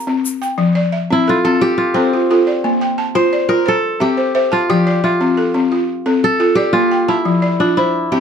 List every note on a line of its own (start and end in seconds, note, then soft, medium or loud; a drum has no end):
0.00 0.29 G4 medium
0.00 0.34 A#4 medium
0.00 0.42 A#5 medium
0.07 0.41 C4 medium
0.25 shaker medium
0.42 0.76 G5 medium
0.42 shaker soft
0.58 0.92 F3 medium
0.75 1.27 D5 medium
0.92 1.44 E5 medium
1.11 1.43 C4 medium
1.11 1.35 E4 medium
1.28 1.77 F4 medium
1.28 1.79 A4 medium
1.45 1.79 C4 medium
1.45 2.77 A4 loud
1.61 2.12 F4 medium
1.61 3.03 G4 loud
1.78 3.29 F4 medium
1.94 3.74 C4 medium
1.94 2.30 C4 medium
1.94 2.29 A4 medium
2.13 2.30 F4 medium
2.30 2.64 F4 medium
2.30 2.81 A4 medium
2.47 2.81 D5 medium
2.64 2.98 A#3 medium
2.81 3.32 G5 medium
2.98 3.49 A5 medium
3.15 3.48 F4 medium
3.15 4.34 C5 loud
3.33 3.84 D5 medium
3.49 3.66 F4 medium
3.49 3.74 A#4 loud
3.66 5.00 A4 loud
3.66 4.16 C5 medium
4.00 4.35 C4 medium
4.00 4.69 G4 medium
4.00 4.34 E5 medium
4.17 4.34 C5 medium
4.35 4.69 C5 medium
4.35 4.86 E5 medium
4.52 5.03 F4 medium
4.52 4.86 A5 medium
4.70 5.03 F3 medium
4.70 6.11 G4 loud
4.87 5.38 D5 medium
5.04 6.55 F4 medium
5.04 5.55 E5 medium
5.21 5.53 C4 medium
5.37 5.89 A4 medium
5.54 5.88 C4 medium
5.72 6.23 F4 medium
6.06 6.40 C4 medium
6.06 6.39 A4 medium
6.24 7.56 A4 loud
6.40 6.74 F4 medium
6.40 6.91 A4 medium
6.55 7.97 G4 medium
6.55 6.91 D5 medium
6.73 7.08 A#3 medium
6.73 7.14 F4 loud
6.91 7.42 G5 medium
7.08 7.77 E4 medium
7.08 7.59 A5 medium
7.25 7.59 F3 medium
7.42 7.93 D5 medium
7.60 8.20 D4 medium
7.60 7.77 F4 medium
7.77 8.20 E4 medium
7.77 8.20 C5 medium
8.12 8.20 C4 medium
8.12 8.20 G4 medium
8.12 8.20 E5 medium